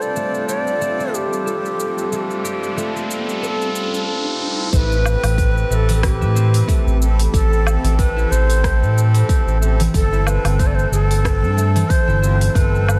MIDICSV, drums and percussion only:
0, 0, Header, 1, 2, 480
1, 0, Start_track
1, 0, Key_signature, 0, "minor"
1, 0, Tempo, 652174
1, 1555, Time_signature, 4, 2, 24, 8
1, 9564, End_track
2, 0, Start_track
2, 0, Title_t, "Drums"
2, 13, Note_on_c, 9, 69, 31
2, 87, Note_off_c, 9, 69, 0
2, 119, Note_on_c, 9, 69, 43
2, 193, Note_off_c, 9, 69, 0
2, 253, Note_on_c, 9, 69, 22
2, 326, Note_off_c, 9, 69, 0
2, 360, Note_on_c, 9, 69, 70
2, 434, Note_off_c, 9, 69, 0
2, 494, Note_on_c, 9, 69, 30
2, 568, Note_off_c, 9, 69, 0
2, 602, Note_on_c, 9, 69, 43
2, 675, Note_off_c, 9, 69, 0
2, 737, Note_on_c, 9, 69, 20
2, 811, Note_off_c, 9, 69, 0
2, 843, Note_on_c, 9, 69, 74
2, 916, Note_off_c, 9, 69, 0
2, 979, Note_on_c, 9, 69, 31
2, 1052, Note_off_c, 9, 69, 0
2, 1085, Note_on_c, 9, 69, 43
2, 1159, Note_off_c, 9, 69, 0
2, 1218, Note_on_c, 9, 69, 20
2, 1291, Note_off_c, 9, 69, 0
2, 1324, Note_on_c, 9, 69, 75
2, 1398, Note_off_c, 9, 69, 0
2, 1458, Note_on_c, 9, 69, 33
2, 1532, Note_off_c, 9, 69, 0
2, 1564, Note_on_c, 9, 69, 41
2, 1637, Note_off_c, 9, 69, 0
2, 1697, Note_on_c, 9, 69, 21
2, 1771, Note_off_c, 9, 69, 0
2, 1805, Note_on_c, 9, 69, 68
2, 1878, Note_off_c, 9, 69, 0
2, 1939, Note_on_c, 9, 69, 33
2, 2012, Note_off_c, 9, 69, 0
2, 2047, Note_on_c, 9, 69, 43
2, 2120, Note_off_c, 9, 69, 0
2, 2182, Note_on_c, 9, 69, 22
2, 2256, Note_off_c, 9, 69, 0
2, 2288, Note_on_c, 9, 69, 72
2, 2361, Note_off_c, 9, 69, 0
2, 2422, Note_on_c, 9, 69, 30
2, 2495, Note_off_c, 9, 69, 0
2, 2530, Note_on_c, 9, 69, 42
2, 2603, Note_off_c, 9, 69, 0
2, 2661, Note_on_c, 9, 69, 21
2, 2735, Note_off_c, 9, 69, 0
2, 2764, Note_on_c, 9, 69, 75
2, 2838, Note_off_c, 9, 69, 0
2, 2901, Note_on_c, 9, 69, 31
2, 2974, Note_off_c, 9, 69, 0
2, 3480, Note_on_c, 9, 36, 105
2, 3480, Note_on_c, 9, 46, 47
2, 3487, Note_on_c, 9, 69, 47
2, 3553, Note_off_c, 9, 46, 0
2, 3554, Note_off_c, 9, 36, 0
2, 3560, Note_off_c, 9, 69, 0
2, 3621, Note_on_c, 9, 69, 22
2, 3694, Note_off_c, 9, 69, 0
2, 3721, Note_on_c, 9, 77, 73
2, 3728, Note_on_c, 9, 69, 75
2, 3794, Note_off_c, 9, 77, 0
2, 3801, Note_off_c, 9, 69, 0
2, 3853, Note_on_c, 9, 46, 59
2, 3853, Note_on_c, 9, 77, 63
2, 3860, Note_on_c, 9, 69, 36
2, 3927, Note_off_c, 9, 46, 0
2, 3927, Note_off_c, 9, 77, 0
2, 3934, Note_off_c, 9, 69, 0
2, 3960, Note_on_c, 9, 36, 98
2, 3961, Note_on_c, 9, 46, 45
2, 3968, Note_on_c, 9, 69, 47
2, 4034, Note_off_c, 9, 36, 0
2, 4035, Note_off_c, 9, 46, 0
2, 4042, Note_off_c, 9, 69, 0
2, 4103, Note_on_c, 9, 69, 24
2, 4176, Note_off_c, 9, 69, 0
2, 4208, Note_on_c, 9, 69, 78
2, 4282, Note_off_c, 9, 69, 0
2, 4334, Note_on_c, 9, 46, 57
2, 4341, Note_on_c, 9, 69, 30
2, 4408, Note_off_c, 9, 46, 0
2, 4415, Note_off_c, 9, 69, 0
2, 4440, Note_on_c, 9, 36, 104
2, 4440, Note_on_c, 9, 37, 81
2, 4440, Note_on_c, 9, 46, 50
2, 4447, Note_on_c, 9, 69, 43
2, 4514, Note_off_c, 9, 36, 0
2, 4514, Note_off_c, 9, 37, 0
2, 4514, Note_off_c, 9, 46, 0
2, 4521, Note_off_c, 9, 69, 0
2, 4578, Note_on_c, 9, 69, 24
2, 4652, Note_off_c, 9, 69, 0
2, 4685, Note_on_c, 9, 69, 83
2, 4759, Note_off_c, 9, 69, 0
2, 4814, Note_on_c, 9, 46, 56
2, 4821, Note_on_c, 9, 69, 33
2, 4888, Note_off_c, 9, 46, 0
2, 4895, Note_off_c, 9, 69, 0
2, 4920, Note_on_c, 9, 36, 98
2, 4921, Note_on_c, 9, 46, 49
2, 4928, Note_on_c, 9, 69, 42
2, 4994, Note_off_c, 9, 36, 0
2, 4995, Note_off_c, 9, 46, 0
2, 5002, Note_off_c, 9, 69, 0
2, 5062, Note_on_c, 9, 69, 21
2, 5135, Note_off_c, 9, 69, 0
2, 5167, Note_on_c, 9, 69, 83
2, 5240, Note_off_c, 9, 69, 0
2, 5295, Note_on_c, 9, 46, 57
2, 5303, Note_on_c, 9, 69, 34
2, 5369, Note_off_c, 9, 46, 0
2, 5376, Note_off_c, 9, 69, 0
2, 5400, Note_on_c, 9, 36, 117
2, 5403, Note_on_c, 9, 46, 46
2, 5410, Note_on_c, 9, 69, 44
2, 5474, Note_off_c, 9, 36, 0
2, 5476, Note_off_c, 9, 46, 0
2, 5483, Note_off_c, 9, 69, 0
2, 5542, Note_on_c, 9, 69, 22
2, 5616, Note_off_c, 9, 69, 0
2, 5642, Note_on_c, 9, 77, 77
2, 5649, Note_on_c, 9, 69, 76
2, 5716, Note_off_c, 9, 77, 0
2, 5723, Note_off_c, 9, 69, 0
2, 5774, Note_on_c, 9, 46, 53
2, 5781, Note_on_c, 9, 69, 33
2, 5848, Note_off_c, 9, 46, 0
2, 5855, Note_off_c, 9, 69, 0
2, 5879, Note_on_c, 9, 46, 48
2, 5880, Note_on_c, 9, 36, 105
2, 5886, Note_on_c, 9, 69, 48
2, 5953, Note_off_c, 9, 36, 0
2, 5953, Note_off_c, 9, 46, 0
2, 5960, Note_off_c, 9, 69, 0
2, 6024, Note_on_c, 9, 69, 25
2, 6098, Note_off_c, 9, 69, 0
2, 6127, Note_on_c, 9, 69, 81
2, 6201, Note_off_c, 9, 69, 0
2, 6254, Note_on_c, 9, 46, 50
2, 6261, Note_on_c, 9, 69, 31
2, 6327, Note_off_c, 9, 46, 0
2, 6334, Note_off_c, 9, 69, 0
2, 6359, Note_on_c, 9, 36, 106
2, 6361, Note_on_c, 9, 37, 83
2, 6361, Note_on_c, 9, 46, 48
2, 6368, Note_on_c, 9, 69, 46
2, 6432, Note_off_c, 9, 36, 0
2, 6434, Note_off_c, 9, 37, 0
2, 6434, Note_off_c, 9, 46, 0
2, 6441, Note_off_c, 9, 69, 0
2, 6501, Note_on_c, 9, 69, 23
2, 6575, Note_off_c, 9, 69, 0
2, 6608, Note_on_c, 9, 69, 82
2, 6682, Note_off_c, 9, 69, 0
2, 6731, Note_on_c, 9, 46, 54
2, 6738, Note_on_c, 9, 69, 36
2, 6805, Note_off_c, 9, 46, 0
2, 6812, Note_off_c, 9, 69, 0
2, 6839, Note_on_c, 9, 36, 108
2, 6839, Note_on_c, 9, 46, 46
2, 6846, Note_on_c, 9, 69, 49
2, 6912, Note_off_c, 9, 36, 0
2, 6912, Note_off_c, 9, 46, 0
2, 6920, Note_off_c, 9, 69, 0
2, 6978, Note_on_c, 9, 69, 22
2, 7052, Note_off_c, 9, 69, 0
2, 7085, Note_on_c, 9, 69, 85
2, 7158, Note_off_c, 9, 69, 0
2, 7213, Note_on_c, 9, 46, 56
2, 7219, Note_on_c, 9, 69, 32
2, 7286, Note_off_c, 9, 46, 0
2, 7293, Note_off_c, 9, 69, 0
2, 7318, Note_on_c, 9, 36, 113
2, 7318, Note_on_c, 9, 46, 46
2, 7325, Note_on_c, 9, 69, 47
2, 7391, Note_off_c, 9, 36, 0
2, 7391, Note_off_c, 9, 46, 0
2, 7398, Note_off_c, 9, 69, 0
2, 7457, Note_on_c, 9, 69, 22
2, 7531, Note_off_c, 9, 69, 0
2, 7556, Note_on_c, 9, 77, 72
2, 7563, Note_on_c, 9, 69, 79
2, 7630, Note_off_c, 9, 77, 0
2, 7637, Note_off_c, 9, 69, 0
2, 7691, Note_on_c, 9, 46, 59
2, 7691, Note_on_c, 9, 77, 62
2, 7698, Note_on_c, 9, 69, 37
2, 7765, Note_off_c, 9, 46, 0
2, 7765, Note_off_c, 9, 77, 0
2, 7772, Note_off_c, 9, 69, 0
2, 7798, Note_on_c, 9, 36, 103
2, 7798, Note_on_c, 9, 46, 44
2, 7805, Note_on_c, 9, 69, 49
2, 7871, Note_off_c, 9, 36, 0
2, 7871, Note_off_c, 9, 46, 0
2, 7878, Note_off_c, 9, 69, 0
2, 7941, Note_on_c, 9, 69, 24
2, 8014, Note_off_c, 9, 69, 0
2, 8045, Note_on_c, 9, 69, 80
2, 8118, Note_off_c, 9, 69, 0
2, 8175, Note_on_c, 9, 46, 50
2, 8182, Note_on_c, 9, 69, 36
2, 8249, Note_off_c, 9, 46, 0
2, 8256, Note_off_c, 9, 69, 0
2, 8279, Note_on_c, 9, 36, 111
2, 8282, Note_on_c, 9, 37, 84
2, 8282, Note_on_c, 9, 46, 46
2, 8289, Note_on_c, 9, 69, 49
2, 8352, Note_off_c, 9, 36, 0
2, 8355, Note_off_c, 9, 37, 0
2, 8355, Note_off_c, 9, 46, 0
2, 8362, Note_off_c, 9, 69, 0
2, 8421, Note_on_c, 9, 69, 24
2, 8494, Note_off_c, 9, 69, 0
2, 8525, Note_on_c, 9, 69, 85
2, 8598, Note_off_c, 9, 69, 0
2, 8654, Note_on_c, 9, 46, 57
2, 8661, Note_on_c, 9, 69, 33
2, 8728, Note_off_c, 9, 46, 0
2, 8735, Note_off_c, 9, 69, 0
2, 8759, Note_on_c, 9, 36, 115
2, 8759, Note_on_c, 9, 46, 44
2, 8766, Note_on_c, 9, 69, 45
2, 8832, Note_off_c, 9, 36, 0
2, 8833, Note_off_c, 9, 46, 0
2, 8840, Note_off_c, 9, 69, 0
2, 8900, Note_on_c, 9, 69, 22
2, 8973, Note_off_c, 9, 69, 0
2, 9007, Note_on_c, 9, 69, 83
2, 9080, Note_off_c, 9, 69, 0
2, 9136, Note_on_c, 9, 46, 54
2, 9143, Note_on_c, 9, 69, 36
2, 9209, Note_off_c, 9, 46, 0
2, 9216, Note_off_c, 9, 69, 0
2, 9239, Note_on_c, 9, 36, 115
2, 9242, Note_on_c, 9, 46, 43
2, 9249, Note_on_c, 9, 69, 46
2, 9313, Note_off_c, 9, 36, 0
2, 9315, Note_off_c, 9, 46, 0
2, 9322, Note_off_c, 9, 69, 0
2, 9386, Note_on_c, 9, 69, 23
2, 9460, Note_off_c, 9, 69, 0
2, 9483, Note_on_c, 9, 77, 74
2, 9490, Note_on_c, 9, 69, 79
2, 9557, Note_off_c, 9, 77, 0
2, 9564, Note_off_c, 9, 69, 0
2, 9564, End_track
0, 0, End_of_file